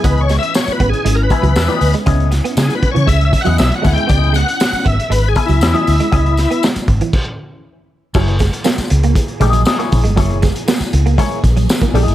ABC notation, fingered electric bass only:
X:1
M:4/4
L:1/16
Q:1/4=118
K:C#dor
V:1 name="Fingered electric bass" clef=bass
C,,3 z3 G,,, z G,,,2 z C,, E,, z =D,, z | C,,3 z C, z2 C, C,,2 z E,, B,,, z =D,, z | C,,3 z3 G,,, z G,,,2 z C,, E,, z =D,, z | C,,3 z3 G,,, z8 z |
F,,,3 z3 C,,2 z2 A,,,2 z2 A,,, =G,,, | F,,,3 z3 C,,2 z2 A,,,2 z2 A,,, =G,,, |]